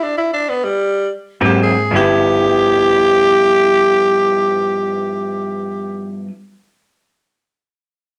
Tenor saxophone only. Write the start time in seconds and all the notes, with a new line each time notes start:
0.03 D4
0.17 E4
0.33 D4
0.49 B3
0.64 G3
1.45 G4
1.63 G#4
1.96 G4